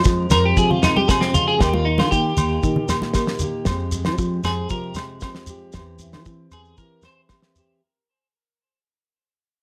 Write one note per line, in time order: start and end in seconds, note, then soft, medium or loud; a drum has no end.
0.00 1.59 F2 medium
0.00 1.56 F3 medium
0.00 0.81 G#3 soft
0.00 shekere medium
0.05 0.26 F3 loud
0.05 kick medium
0.05 snare soft
0.30 0.52 F2 medium
0.30 1.59 C4 medium
0.30 0.44 A#4 medium
0.30 snare medium
0.30 low conga medium
0.30 low agogo medium
0.30 shekere loud
0.45 0.57 G4 medium
0.56 1.06 C3 medium
0.56 0.77 F3 medium
0.56 3.15 G4 medium
0.56 0.70 G#4 medium
0.56 kick medium
0.56 shekere medium
0.70 0.82 F4 medium
0.70 low conga medium
0.83 1.60 G#3 medium
0.83 0.96 D#4 medium
0.83 snare medium
0.83 low agogo medium
0.83 shekere medium
0.96 1.08 G4 medium
0.96 high conga medium
1.07 1.33 C3 medium
1.07 1.21 G#4 medium
1.07 kick medium
1.07 snare medium
1.07 low agogo medium
1.07 shekere medium
1.21 1.33 C4 medium
1.21 snare medium
1.33 1.60 C#3 medium
1.33 1.47 F4 medium
1.33 low conga medium
1.33 shekere medium
1.48 1.60 G#4 loud
1.58 2.02 D#2 loud
1.58 3.66 D#3 medium
1.58 1.85 D#4 medium
1.58 1.74 G4 medium
1.58 kick medium
1.58 snare medium
1.58 low agogo soft
1.58 shekere medium
1.74 1.86 F4 medium
1.74 high conga medium
1.85 1.98 D#4 medium
1.85 2.36 D#4 soft
1.98 2.10 D#3 medium
1.98 2.11 F4 medium
1.98 snare medium
1.98 high conga medium
1.98 low agogo medium
2.11 2.32 D#3 loud
2.11 3.14 A#3 medium
2.11 3.11 G4 medium
2.11 kick medium
2.11 shekere medium
2.37 2.58 D#2 medium
2.37 2.61 D#4 medium
2.37 low conga medium
2.37 low agogo medium
2.37 shekere medium
2.63 3.67 A#2 medium
2.63 2.84 D#3 medium
2.63 2.87 D#4 medium
2.63 kick medium
2.63 shekere medium
2.76 low conga medium
2.88 3.63 D#4 medium
2.88 snare medium
2.88 low agogo medium
2.88 shekere medium
3.02 snare soft
3.02 high conga medium
3.14 3.64 A#3 medium
3.14 3.42 G4 medium
3.14 kick medium
3.14 snare medium
3.14 low agogo medium
3.14 shekere medium
3.27 snare medium
3.39 3.70 G4 medium
3.39 low conga medium
3.39 shekere loud
3.65 4.08 F2 loud
3.65 5.75 F2 medium
3.65 muted steel-string acoustic guitar stroke medium
3.65 kick medium
3.65 snare medium
3.65 low agogo soft
3.65 shekere medium
3.69 3.93 G#3 medium
3.69 4.44 C4 medium
3.69 4.70 G4 medium
3.92 4.95 G#3 medium
3.92 shekere loud
4.05 4.17 F3 medium
4.05 snare medium
4.05 low agogo medium
4.18 4.39 F3 loud
4.18 5.21 F3 medium
4.18 kick medium
4.18 shekere medium
4.44 4.66 F2 medium
4.44 5.23 C4 medium
4.44 4.70 G#4 medium
4.44 snare medium
4.44 low agogo medium
4.44 shekere loud
4.69 5.22 C3 medium
4.69 4.91 F3 medium
4.69 5.49 G4 medium
4.69 4.96 A#4 medium
4.69 kick medium
4.69 shekere medium
4.94 5.74 G#3 medium
4.94 snare medium
4.94 low agogo medium
4.94 shekere medium
5.21 5.71 F3 medium
5.21 5.77 C4 medium
5.21 kick medium
5.21 snare medium
5.21 low agogo medium
5.21 shekere medium
5.35 snare medium
5.47 5.78 G4 medium
5.47 shekere loud
5.72 6.16 E2 medium
5.72 6.79 E3 medium
5.72 kick medium
5.72 snare medium
5.72 low agogo medium
5.72 shekere medium
5.77 6.28 C4 medium
5.77 6.02 E4 medium
5.77 6.54 G4 medium
5.99 7.05 E4 soft
5.99 shekere loud
6.12 6.24 E3 medium
6.12 snare medium
6.12 low agogo medium
6.12 shekere soft
6.25 6.47 E3 medium
6.25 kick medium
6.25 snare soft
6.25 shekere medium
6.29 7.30 C4 medium
6.51 6.74 E2 medium
6.51 6.78 G#4 medium
6.51 low agogo medium
6.51 shekere loud
6.56 6.80 G4 medium
6.65 shekere soft
6.77 6.99 E3 medium
6.77 7.80 E3 medium
6.77 7.03 A#4 medium
6.77 kick medium
6.77 shekere medium
6.82 7.31 G4 medium
7.02 7.20 C5 medium
7.02 snare medium
7.02 low agogo medium
7.02 shekere medium
7.07 7.81 E4 soft
7.29 7.80 C4 medium
7.29 7.57 G4 medium
7.29 kick medium
7.29 snare medium
7.29 low agogo medium
7.29 shekere medium
7.42 snare medium
7.56 7.80 G4 medium
7.56 shekere medium